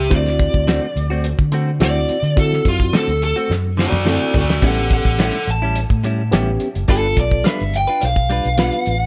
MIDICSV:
0, 0, Header, 1, 6, 480
1, 0, Start_track
1, 0, Tempo, 564600
1, 95, Time_signature, 4, 2, 24, 8
1, 7706, End_track
2, 0, Start_track
2, 0, Title_t, "Lead electric guitar"
2, 0, Program_c, 0, 29
2, 0, Note_on_c, 0, 67, 85
2, 0, Note_on_c, 0, 76, 87
2, 99, Note_off_c, 0, 67, 0
2, 107, Note_off_c, 0, 76, 0
2, 128, Note_on_c, 0, 74, 90
2, 1043, Note_off_c, 0, 74, 0
2, 1567, Note_on_c, 0, 74, 104
2, 2017, Note_off_c, 0, 74, 0
2, 2033, Note_on_c, 0, 69, 73
2, 2257, Note_off_c, 0, 69, 0
2, 2283, Note_on_c, 0, 65, 88
2, 2502, Note_off_c, 0, 65, 0
2, 2510, Note_on_c, 0, 69, 86
2, 2735, Note_off_c, 0, 69, 0
2, 2754, Note_on_c, 0, 69, 91
2, 2978, Note_off_c, 0, 69, 0
2, 3236, Note_on_c, 0, 66, 81
2, 3243, Note_on_c, 0, 74, 94
2, 3455, Note_off_c, 0, 66, 0
2, 3462, Note_off_c, 0, 74, 0
2, 3466, Note_on_c, 0, 66, 68
2, 3474, Note_on_c, 0, 74, 85
2, 3684, Note_off_c, 0, 66, 0
2, 3698, Note_off_c, 0, 74, 0
2, 3719, Note_on_c, 0, 66, 72
2, 3732, Note_on_c, 0, 74, 78
2, 3931, Note_off_c, 0, 66, 0
2, 3947, Note_off_c, 0, 74, 0
2, 3961, Note_on_c, 0, 69, 73
2, 3967, Note_on_c, 0, 78, 83
2, 4172, Note_off_c, 0, 69, 0
2, 4185, Note_off_c, 0, 78, 0
2, 4199, Note_on_c, 0, 78, 88
2, 4203, Note_on_c, 0, 69, 77
2, 4413, Note_off_c, 0, 69, 0
2, 4420, Note_off_c, 0, 78, 0
2, 4443, Note_on_c, 0, 69, 73
2, 4448, Note_on_c, 0, 78, 72
2, 4654, Note_off_c, 0, 69, 0
2, 4664, Note_off_c, 0, 78, 0
2, 4681, Note_on_c, 0, 81, 96
2, 4901, Note_off_c, 0, 81, 0
2, 5876, Note_on_c, 0, 69, 90
2, 6099, Note_off_c, 0, 69, 0
2, 6119, Note_on_c, 0, 74, 100
2, 6340, Note_off_c, 0, 74, 0
2, 6361, Note_on_c, 0, 76, 80
2, 6581, Note_off_c, 0, 76, 0
2, 6606, Note_on_c, 0, 79, 78
2, 6824, Note_off_c, 0, 79, 0
2, 6851, Note_on_c, 0, 77, 97
2, 7706, Note_off_c, 0, 77, 0
2, 7706, End_track
3, 0, Start_track
3, 0, Title_t, "Reed electric piano"
3, 0, Program_c, 1, 4
3, 82, Note_on_c, 1, 60, 68
3, 89, Note_on_c, 1, 64, 66
3, 94, Note_on_c, 1, 66, 80
3, 694, Note_off_c, 1, 60, 0
3, 698, Note_off_c, 1, 64, 0
3, 700, Note_off_c, 1, 66, 0
3, 1530, Note_on_c, 1, 60, 77
3, 1534, Note_on_c, 1, 64, 71
3, 1538, Note_on_c, 1, 66, 85
3, 1836, Note_off_c, 1, 60, 0
3, 1837, Note_off_c, 1, 64, 0
3, 1839, Note_off_c, 1, 66, 0
3, 2008, Note_on_c, 1, 60, 71
3, 2012, Note_on_c, 1, 64, 68
3, 2016, Note_on_c, 1, 66, 80
3, 2617, Note_off_c, 1, 60, 0
3, 2619, Note_off_c, 1, 64, 0
3, 2621, Note_off_c, 1, 66, 0
3, 3441, Note_on_c, 1, 60, 78
3, 3449, Note_on_c, 1, 64, 69
3, 3453, Note_on_c, 1, 69, 81
3, 3751, Note_off_c, 1, 60, 0
3, 3755, Note_off_c, 1, 64, 0
3, 3757, Note_off_c, 1, 69, 0
3, 3923, Note_on_c, 1, 59, 73
3, 3924, Note_on_c, 1, 61, 69
3, 3932, Note_on_c, 1, 67, 79
3, 4534, Note_off_c, 1, 59, 0
3, 4535, Note_off_c, 1, 61, 0
3, 4540, Note_off_c, 1, 67, 0
3, 5368, Note_on_c, 1, 59, 87
3, 5371, Note_on_c, 1, 61, 83
3, 5379, Note_on_c, 1, 67, 99
3, 5674, Note_off_c, 1, 59, 0
3, 5676, Note_off_c, 1, 61, 0
3, 5680, Note_off_c, 1, 67, 0
3, 5849, Note_on_c, 1, 59, 77
3, 5855, Note_on_c, 1, 65, 66
3, 5858, Note_on_c, 1, 69, 79
3, 6458, Note_off_c, 1, 59, 0
3, 6461, Note_off_c, 1, 65, 0
3, 6462, Note_off_c, 1, 69, 0
3, 7291, Note_on_c, 1, 59, 75
3, 7297, Note_on_c, 1, 65, 68
3, 7304, Note_on_c, 1, 71, 85
3, 7596, Note_off_c, 1, 59, 0
3, 7599, Note_off_c, 1, 65, 0
3, 7602, Note_off_c, 1, 71, 0
3, 7706, End_track
4, 0, Start_track
4, 0, Title_t, "Clean electric guitar"
4, 0, Program_c, 2, 27
4, 90, Note_on_c, 2, 50, 76
4, 97, Note_on_c, 2, 57, 86
4, 103, Note_on_c, 2, 60, 69
4, 109, Note_on_c, 2, 66, 85
4, 240, Note_off_c, 2, 50, 0
4, 243, Note_off_c, 2, 57, 0
4, 246, Note_off_c, 2, 60, 0
4, 249, Note_off_c, 2, 66, 0
4, 574, Note_on_c, 2, 50, 85
4, 579, Note_on_c, 2, 57, 95
4, 585, Note_on_c, 2, 60, 88
4, 590, Note_on_c, 2, 66, 104
4, 722, Note_off_c, 2, 50, 0
4, 725, Note_off_c, 2, 57, 0
4, 727, Note_off_c, 2, 60, 0
4, 730, Note_off_c, 2, 66, 0
4, 937, Note_on_c, 2, 66, 55
4, 947, Note_on_c, 2, 60, 62
4, 958, Note_on_c, 2, 57, 47
4, 1079, Note_off_c, 2, 66, 0
4, 1084, Note_off_c, 2, 60, 0
4, 1090, Note_off_c, 2, 57, 0
4, 1293, Note_on_c, 2, 50, 65
4, 1303, Note_on_c, 2, 57, 65
4, 1308, Note_on_c, 2, 60, 65
4, 1314, Note_on_c, 2, 66, 70
4, 1441, Note_off_c, 2, 50, 0
4, 1446, Note_off_c, 2, 57, 0
4, 1449, Note_off_c, 2, 60, 0
4, 1452, Note_off_c, 2, 66, 0
4, 1537, Note_on_c, 2, 50, 91
4, 1544, Note_on_c, 2, 57, 83
4, 1545, Note_on_c, 2, 60, 81
4, 1552, Note_on_c, 2, 66, 88
4, 1683, Note_off_c, 2, 50, 0
4, 1687, Note_off_c, 2, 57, 0
4, 1687, Note_off_c, 2, 60, 0
4, 1691, Note_off_c, 2, 66, 0
4, 2494, Note_on_c, 2, 50, 75
4, 2495, Note_on_c, 2, 57, 91
4, 2504, Note_on_c, 2, 60, 86
4, 2507, Note_on_c, 2, 66, 92
4, 2642, Note_off_c, 2, 50, 0
4, 2642, Note_off_c, 2, 57, 0
4, 2647, Note_off_c, 2, 60, 0
4, 2648, Note_off_c, 2, 66, 0
4, 2858, Note_on_c, 2, 66, 57
4, 2867, Note_on_c, 2, 60, 51
4, 2877, Note_on_c, 2, 57, 46
4, 2999, Note_off_c, 2, 66, 0
4, 3004, Note_off_c, 2, 60, 0
4, 3009, Note_off_c, 2, 57, 0
4, 3209, Note_on_c, 2, 50, 57
4, 3218, Note_on_c, 2, 57, 56
4, 3227, Note_on_c, 2, 60, 57
4, 3234, Note_on_c, 2, 66, 57
4, 3359, Note_off_c, 2, 50, 0
4, 3364, Note_off_c, 2, 57, 0
4, 3368, Note_off_c, 2, 60, 0
4, 3372, Note_off_c, 2, 66, 0
4, 3444, Note_on_c, 2, 50, 81
4, 3450, Note_on_c, 2, 57, 84
4, 3456, Note_on_c, 2, 60, 81
4, 3459, Note_on_c, 2, 66, 84
4, 3597, Note_off_c, 2, 50, 0
4, 3600, Note_off_c, 2, 57, 0
4, 3603, Note_off_c, 2, 60, 0
4, 3604, Note_off_c, 2, 66, 0
4, 3930, Note_on_c, 2, 45, 67
4, 3935, Note_on_c, 2, 55, 81
4, 3942, Note_on_c, 2, 61, 88
4, 3945, Note_on_c, 2, 64, 80
4, 4080, Note_off_c, 2, 45, 0
4, 4082, Note_off_c, 2, 55, 0
4, 4086, Note_off_c, 2, 61, 0
4, 4088, Note_off_c, 2, 64, 0
4, 4409, Note_on_c, 2, 45, 92
4, 4417, Note_on_c, 2, 55, 90
4, 4421, Note_on_c, 2, 61, 86
4, 4429, Note_on_c, 2, 64, 97
4, 4559, Note_off_c, 2, 45, 0
4, 4564, Note_off_c, 2, 55, 0
4, 4565, Note_off_c, 2, 61, 0
4, 4569, Note_off_c, 2, 64, 0
4, 4779, Note_on_c, 2, 64, 54
4, 4787, Note_on_c, 2, 61, 49
4, 4799, Note_on_c, 2, 55, 45
4, 4920, Note_off_c, 2, 64, 0
4, 4924, Note_off_c, 2, 61, 0
4, 4930, Note_off_c, 2, 55, 0
4, 5131, Note_on_c, 2, 45, 63
4, 5140, Note_on_c, 2, 55, 62
4, 5146, Note_on_c, 2, 61, 63
4, 5154, Note_on_c, 2, 64, 69
4, 5281, Note_off_c, 2, 45, 0
4, 5285, Note_off_c, 2, 55, 0
4, 5288, Note_off_c, 2, 61, 0
4, 5292, Note_off_c, 2, 64, 0
4, 5378, Note_on_c, 2, 45, 83
4, 5384, Note_on_c, 2, 55, 101
4, 5389, Note_on_c, 2, 61, 97
4, 5392, Note_on_c, 2, 64, 101
4, 5524, Note_off_c, 2, 45, 0
4, 5527, Note_off_c, 2, 55, 0
4, 5529, Note_off_c, 2, 61, 0
4, 5531, Note_off_c, 2, 64, 0
4, 5852, Note_on_c, 2, 55, 72
4, 5859, Note_on_c, 2, 62, 80
4, 5864, Note_on_c, 2, 65, 76
4, 5868, Note_on_c, 2, 71, 85
4, 6001, Note_off_c, 2, 55, 0
4, 6004, Note_off_c, 2, 62, 0
4, 6007, Note_off_c, 2, 65, 0
4, 6009, Note_off_c, 2, 71, 0
4, 6328, Note_on_c, 2, 55, 95
4, 6336, Note_on_c, 2, 62, 95
4, 6341, Note_on_c, 2, 65, 98
4, 6345, Note_on_c, 2, 71, 97
4, 6479, Note_off_c, 2, 55, 0
4, 6483, Note_off_c, 2, 62, 0
4, 6486, Note_off_c, 2, 65, 0
4, 6487, Note_off_c, 2, 71, 0
4, 6694, Note_on_c, 2, 71, 58
4, 6709, Note_on_c, 2, 65, 47
4, 6715, Note_on_c, 2, 62, 46
4, 6838, Note_off_c, 2, 71, 0
4, 6845, Note_off_c, 2, 65, 0
4, 6848, Note_off_c, 2, 62, 0
4, 7052, Note_on_c, 2, 55, 57
4, 7061, Note_on_c, 2, 62, 66
4, 7069, Note_on_c, 2, 65, 53
4, 7076, Note_on_c, 2, 71, 60
4, 7201, Note_off_c, 2, 55, 0
4, 7206, Note_off_c, 2, 62, 0
4, 7209, Note_off_c, 2, 65, 0
4, 7213, Note_off_c, 2, 71, 0
4, 7293, Note_on_c, 2, 55, 77
4, 7298, Note_on_c, 2, 62, 77
4, 7304, Note_on_c, 2, 65, 87
4, 7308, Note_on_c, 2, 71, 85
4, 7442, Note_off_c, 2, 55, 0
4, 7444, Note_off_c, 2, 62, 0
4, 7447, Note_off_c, 2, 65, 0
4, 7449, Note_off_c, 2, 71, 0
4, 7706, End_track
5, 0, Start_track
5, 0, Title_t, "Fingered electric bass"
5, 0, Program_c, 3, 33
5, 100, Note_on_c, 3, 38, 88
5, 407, Note_off_c, 3, 38, 0
5, 460, Note_on_c, 3, 38, 83
5, 664, Note_off_c, 3, 38, 0
5, 814, Note_on_c, 3, 38, 81
5, 1124, Note_off_c, 3, 38, 0
5, 1180, Note_on_c, 3, 50, 86
5, 1530, Note_on_c, 3, 38, 91
5, 1542, Note_off_c, 3, 50, 0
5, 1736, Note_off_c, 3, 38, 0
5, 1893, Note_on_c, 3, 50, 90
5, 2198, Note_off_c, 3, 50, 0
5, 2257, Note_on_c, 3, 42, 89
5, 2460, Note_off_c, 3, 42, 0
5, 2616, Note_on_c, 3, 38, 82
5, 2821, Note_off_c, 3, 38, 0
5, 2973, Note_on_c, 3, 42, 90
5, 3283, Note_off_c, 3, 42, 0
5, 3338, Note_on_c, 3, 42, 80
5, 3542, Note_off_c, 3, 42, 0
5, 3695, Note_on_c, 3, 38, 78
5, 3899, Note_off_c, 3, 38, 0
5, 3931, Note_on_c, 3, 33, 87
5, 4242, Note_off_c, 3, 33, 0
5, 4294, Note_on_c, 3, 33, 80
5, 4500, Note_off_c, 3, 33, 0
5, 4653, Note_on_c, 3, 33, 87
5, 4964, Note_off_c, 3, 33, 0
5, 5019, Note_on_c, 3, 45, 81
5, 5376, Note_on_c, 3, 33, 93
5, 5389, Note_off_c, 3, 45, 0
5, 5580, Note_off_c, 3, 33, 0
5, 5745, Note_on_c, 3, 30, 92
5, 5841, Note_off_c, 3, 30, 0
5, 5855, Note_on_c, 3, 31, 93
5, 6059, Note_off_c, 3, 31, 0
5, 6094, Note_on_c, 3, 35, 90
5, 6299, Note_off_c, 3, 35, 0
5, 6470, Note_on_c, 3, 31, 90
5, 6670, Note_off_c, 3, 31, 0
5, 6826, Note_on_c, 3, 35, 98
5, 7131, Note_off_c, 3, 35, 0
5, 7186, Note_on_c, 3, 35, 85
5, 7387, Note_off_c, 3, 35, 0
5, 7541, Note_on_c, 3, 33, 86
5, 7706, Note_off_c, 3, 33, 0
5, 7706, End_track
6, 0, Start_track
6, 0, Title_t, "Drums"
6, 95, Note_on_c, 9, 42, 81
6, 96, Note_on_c, 9, 36, 109
6, 180, Note_off_c, 9, 42, 0
6, 181, Note_off_c, 9, 36, 0
6, 222, Note_on_c, 9, 42, 42
6, 232, Note_on_c, 9, 38, 34
6, 307, Note_off_c, 9, 42, 0
6, 317, Note_off_c, 9, 38, 0
6, 335, Note_on_c, 9, 42, 62
6, 336, Note_on_c, 9, 36, 88
6, 420, Note_off_c, 9, 42, 0
6, 421, Note_off_c, 9, 36, 0
6, 460, Note_on_c, 9, 36, 80
6, 545, Note_off_c, 9, 36, 0
6, 576, Note_on_c, 9, 42, 81
6, 586, Note_on_c, 9, 38, 106
6, 661, Note_off_c, 9, 42, 0
6, 671, Note_off_c, 9, 38, 0
6, 820, Note_on_c, 9, 42, 53
6, 905, Note_off_c, 9, 42, 0
6, 1055, Note_on_c, 9, 42, 81
6, 1140, Note_off_c, 9, 42, 0
6, 1179, Note_on_c, 9, 36, 78
6, 1181, Note_on_c, 9, 42, 38
6, 1264, Note_off_c, 9, 36, 0
6, 1266, Note_off_c, 9, 42, 0
6, 1291, Note_on_c, 9, 42, 59
6, 1376, Note_off_c, 9, 42, 0
6, 1533, Note_on_c, 9, 42, 78
6, 1544, Note_on_c, 9, 38, 116
6, 1618, Note_off_c, 9, 42, 0
6, 1629, Note_off_c, 9, 38, 0
6, 1776, Note_on_c, 9, 42, 60
6, 1861, Note_off_c, 9, 42, 0
6, 1903, Note_on_c, 9, 42, 40
6, 1988, Note_off_c, 9, 42, 0
6, 2016, Note_on_c, 9, 36, 112
6, 2019, Note_on_c, 9, 42, 88
6, 2101, Note_off_c, 9, 36, 0
6, 2104, Note_off_c, 9, 42, 0
6, 2152, Note_on_c, 9, 38, 38
6, 2237, Note_off_c, 9, 38, 0
6, 2255, Note_on_c, 9, 36, 86
6, 2257, Note_on_c, 9, 42, 67
6, 2340, Note_off_c, 9, 36, 0
6, 2342, Note_off_c, 9, 42, 0
6, 2379, Note_on_c, 9, 36, 89
6, 2464, Note_off_c, 9, 36, 0
6, 2498, Note_on_c, 9, 42, 89
6, 2508, Note_on_c, 9, 38, 109
6, 2583, Note_off_c, 9, 42, 0
6, 2593, Note_off_c, 9, 38, 0
6, 2626, Note_on_c, 9, 42, 36
6, 2711, Note_off_c, 9, 42, 0
6, 2739, Note_on_c, 9, 42, 61
6, 2824, Note_off_c, 9, 42, 0
6, 2864, Note_on_c, 9, 42, 41
6, 2949, Note_off_c, 9, 42, 0
6, 2984, Note_on_c, 9, 38, 59
6, 3069, Note_off_c, 9, 38, 0
6, 3224, Note_on_c, 9, 38, 72
6, 3309, Note_off_c, 9, 38, 0
6, 3335, Note_on_c, 9, 47, 69
6, 3420, Note_off_c, 9, 47, 0
6, 3459, Note_on_c, 9, 38, 86
6, 3544, Note_off_c, 9, 38, 0
6, 3691, Note_on_c, 9, 43, 91
6, 3776, Note_off_c, 9, 43, 0
6, 3828, Note_on_c, 9, 38, 88
6, 3913, Note_off_c, 9, 38, 0
6, 3930, Note_on_c, 9, 36, 113
6, 3930, Note_on_c, 9, 42, 83
6, 4015, Note_off_c, 9, 36, 0
6, 4015, Note_off_c, 9, 42, 0
6, 4054, Note_on_c, 9, 42, 42
6, 4140, Note_off_c, 9, 42, 0
6, 4172, Note_on_c, 9, 36, 92
6, 4174, Note_on_c, 9, 42, 60
6, 4257, Note_off_c, 9, 36, 0
6, 4259, Note_off_c, 9, 42, 0
6, 4295, Note_on_c, 9, 36, 86
6, 4307, Note_on_c, 9, 38, 38
6, 4380, Note_off_c, 9, 36, 0
6, 4392, Note_off_c, 9, 38, 0
6, 4410, Note_on_c, 9, 42, 78
6, 4420, Note_on_c, 9, 38, 113
6, 4495, Note_off_c, 9, 42, 0
6, 4505, Note_off_c, 9, 38, 0
6, 4652, Note_on_c, 9, 42, 59
6, 4737, Note_off_c, 9, 42, 0
6, 4892, Note_on_c, 9, 42, 72
6, 4977, Note_off_c, 9, 42, 0
6, 5017, Note_on_c, 9, 36, 81
6, 5017, Note_on_c, 9, 42, 36
6, 5102, Note_off_c, 9, 36, 0
6, 5102, Note_off_c, 9, 42, 0
6, 5137, Note_on_c, 9, 42, 58
6, 5222, Note_off_c, 9, 42, 0
6, 5374, Note_on_c, 9, 42, 80
6, 5384, Note_on_c, 9, 38, 110
6, 5459, Note_off_c, 9, 42, 0
6, 5469, Note_off_c, 9, 38, 0
6, 5611, Note_on_c, 9, 42, 61
6, 5696, Note_off_c, 9, 42, 0
6, 5742, Note_on_c, 9, 42, 42
6, 5827, Note_off_c, 9, 42, 0
6, 5854, Note_on_c, 9, 36, 105
6, 5854, Note_on_c, 9, 42, 80
6, 5939, Note_off_c, 9, 36, 0
6, 5939, Note_off_c, 9, 42, 0
6, 6094, Note_on_c, 9, 36, 94
6, 6096, Note_on_c, 9, 42, 65
6, 6179, Note_off_c, 9, 36, 0
6, 6181, Note_off_c, 9, 42, 0
6, 6218, Note_on_c, 9, 36, 81
6, 6303, Note_off_c, 9, 36, 0
6, 6336, Note_on_c, 9, 42, 80
6, 6346, Note_on_c, 9, 38, 112
6, 6421, Note_off_c, 9, 42, 0
6, 6431, Note_off_c, 9, 38, 0
6, 6460, Note_on_c, 9, 42, 35
6, 6545, Note_off_c, 9, 42, 0
6, 6576, Note_on_c, 9, 42, 63
6, 6661, Note_off_c, 9, 42, 0
6, 6693, Note_on_c, 9, 42, 38
6, 6778, Note_off_c, 9, 42, 0
6, 6812, Note_on_c, 9, 42, 89
6, 6897, Note_off_c, 9, 42, 0
6, 6938, Note_on_c, 9, 42, 41
6, 6939, Note_on_c, 9, 36, 80
6, 7023, Note_off_c, 9, 42, 0
6, 7024, Note_off_c, 9, 36, 0
6, 7056, Note_on_c, 9, 42, 60
6, 7141, Note_off_c, 9, 42, 0
6, 7179, Note_on_c, 9, 42, 39
6, 7264, Note_off_c, 9, 42, 0
6, 7291, Note_on_c, 9, 42, 85
6, 7302, Note_on_c, 9, 38, 112
6, 7376, Note_off_c, 9, 42, 0
6, 7387, Note_off_c, 9, 38, 0
6, 7416, Note_on_c, 9, 42, 43
6, 7501, Note_off_c, 9, 42, 0
6, 7528, Note_on_c, 9, 42, 69
6, 7613, Note_off_c, 9, 42, 0
6, 7706, End_track
0, 0, End_of_file